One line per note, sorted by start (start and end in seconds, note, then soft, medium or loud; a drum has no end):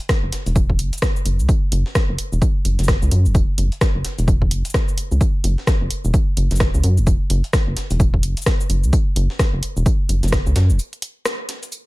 0.09 kick loud
0.09 cross-stick loud
0.09 snare loud
0.09 tambourine medium
0.09 shaker medium
0.23 0.31 F#1 medium
0.32 snare medium
0.32 closed hi-hat medium
0.32 tambourine medium
0.46 0.81 E1 loud
0.46 closed hi-hat soft
0.46 shaker soft
0.56 kick loud
0.56 tambourine medium
0.56 shaker medium
0.70 kick medium
0.79 0.91 F#1 medium
0.79 closed hi-hat medium
0.79 tambourine medium
0.79 shaker soft
0.93 closed hi-hat soft
0.93 shaker soft
0.98 shaker medium
1.02 kick loud
1.02 cross-stick loud
1.02 snare loud
1.02 tambourine medium
1.02 shaker medium
1.16 shaker soft
1.25 1.41 F#1 medium
1.25 closed hi-hat medium
1.25 tambourine medium
1.25 shaker soft
1.39 1.47 C#2 medium
1.39 shaker soft
1.49 kick loud
1.49 tambourine medium
1.49 shaker soft
1.72 1.84 F#1 loud
1.72 closed hi-hat medium
1.72 tambourine medium
1.86 snare soft
1.95 kick loud
1.95 cross-stick loud
1.95 snare loud
1.95 tambourine medium
1.95 shaker medium
2.09 2.17 F#1 medium
2.18 closed hi-hat medium
2.18 tambourine medium
2.32 2.40 E1 loud
2.32 shaker soft
2.42 kick loud
2.42 tambourine medium
2.42 shaker soft
2.65 2.77 F#1 medium
2.65 closed hi-hat medium
2.65 tambourine medium
2.65 shaker soft
2.79 2.98 F#1 loud
2.79 snare soft
2.79 closed hi-hat soft
2.79 shaker soft
2.84 shaker soft
2.88 kick loud
2.88 cross-stick loud
2.88 snare loud
2.88 tambourine medium
2.88 shaker medium
3.02 3.10 C#2 medium
3.02 shaker soft
3.11 3.27 F#2 medium
3.11 closed hi-hat medium
3.11 tambourine medium
3.11 shaker soft
3.25 3.45 E1 medium
3.25 shaker soft
3.35 kick loud
3.35 tambourine medium
3.35 shaker soft
3.58 3.70 F#1 medium
3.58 closed hi-hat medium
3.58 tambourine medium
3.72 closed hi-hat soft
3.81 kick loud
3.81 cross-stick medium
3.81 snare loud
3.81 tambourine medium
3.81 shaker soft
3.95 4.03 F#1 medium
4.05 snare medium
4.05 closed hi-hat medium
4.05 tambourine medium
4.05 shaker soft
4.18 4.52 E1 loud
4.18 closed hi-hat soft
4.18 shaker soft
4.28 kick loud
4.28 tambourine medium
4.28 shaker soft
4.42 kick medium
4.51 4.63 F#1 medium
4.51 closed hi-hat medium
4.51 tambourine medium
4.51 shaker soft
4.65 closed hi-hat soft
4.65 shaker soft
4.70 shaker soft
4.74 kick loud
4.74 cross-stick medium
4.74 snare loud
4.74 tambourine medium
4.74 shaker medium
4.88 shaker soft
4.98 closed hi-hat medium
4.98 tambourine medium
4.98 shaker soft
5.11 5.19 C#2 medium
5.11 shaker soft
5.21 kick loud
5.21 tambourine medium
5.21 shaker soft
5.44 5.56 F#1 medium
5.44 closed hi-hat medium
5.44 tambourine medium
5.58 snare soft
5.67 kick loud
5.67 cross-stick medium
5.67 snare loud
5.67 tambourine medium
5.67 shaker soft
5.81 5.89 F#1 medium
5.91 closed hi-hat medium
5.91 tambourine medium
6.04 6.12 E1 loud
6.04 shaker soft
6.14 kick loud
6.14 tambourine medium
6.14 shaker soft
6.37 6.49 F#1 medium
6.37 closed hi-hat medium
6.37 tambourine medium
6.37 shaker soft
6.51 6.70 F#1 loud
6.51 snare soft
6.51 closed hi-hat soft
6.51 shaker soft
6.56 shaker soft
6.60 kick loud
6.60 cross-stick medium
6.60 snare loud
6.60 tambourine medium
6.74 6.82 C#2 medium
6.74 shaker soft
6.84 6.99 F#2 medium
6.84 closed hi-hat medium
6.84 tambourine medium
6.84 shaker soft
6.97 7.17 E1 medium
6.97 shaker soft
7.07 kick loud
7.07 tambourine medium
7.07 shaker soft
7.30 7.42 F#1 loud
7.30 closed hi-hat medium
7.30 tambourine medium
7.44 closed hi-hat soft
7.53 kick loud
7.53 cross-stick medium
7.53 snare loud
7.53 tambourine medium
7.53 shaker medium
7.67 7.75 F#1 medium
7.77 snare medium
7.77 closed hi-hat medium
7.77 tambourine medium
7.91 8.25 E1 loud
7.91 closed hi-hat soft
7.91 shaker soft
8.00 kick loud
8.00 tambourine medium
8.00 shaker medium
8.14 kick medium
8.23 8.35 F#1 medium
8.23 closed hi-hat medium
8.23 tambourine medium
8.23 shaker soft
8.37 closed hi-hat soft
8.37 shaker soft
8.42 shaker soft
8.46 kick loud
8.46 cross-stick medium
8.46 snare loud
8.46 tambourine medium
8.60 shaker soft
8.70 8.85 F#1 medium
8.70 closed hi-hat medium
8.70 tambourine medium
8.70 shaker soft
8.84 8.91 C#2 medium
8.84 shaker soft
8.93 kick loud
8.93 tambourine medium
8.93 shaker medium
9.16 9.28 F#1 loud
9.16 closed hi-hat medium
9.16 tambourine medium
9.30 snare soft
9.39 kick loud
9.39 cross-stick medium
9.39 snare loud
9.39 tambourine medium
9.39 shaker medium
9.53 9.61 F#1 medium
9.63 closed hi-hat medium
9.63 tambourine medium
9.77 9.85 E1 loud
9.77 shaker soft
9.86 kick loud
9.86 tambourine medium
9.86 shaker medium
10.09 10.21 F#1 medium
10.09 closed hi-hat medium
10.09 tambourine medium
10.09 shaker soft
10.23 10.42 F#1 loud
10.23 snare soft
10.23 closed hi-hat soft
10.23 shaker soft
10.28 shaker soft
10.32 kick loud
10.32 cross-stick medium
10.32 snare loud
10.32 tambourine medium
10.46 10.54 C#2 medium
10.46 shaker soft
10.56 10.71 F#2 medium
10.56 snare loud
10.56 closed hi-hat medium
10.56 tambourine medium
10.56 shaker soft
10.70 10.79 E1 loud
10.70 shaker soft
10.79 tambourine medium
10.79 shaker medium
10.93 closed hi-hat soft
11.02 closed hi-hat medium
11.02 tambourine medium
11.25 cross-stick medium
11.25 snare loud
11.25 tambourine medium
11.25 shaker medium
11.49 snare medium
11.49 closed hi-hat medium
11.49 tambourine medium
11.63 closed hi-hat soft
11.63 shaker soft
11.72 tambourine medium
11.72 shaker medium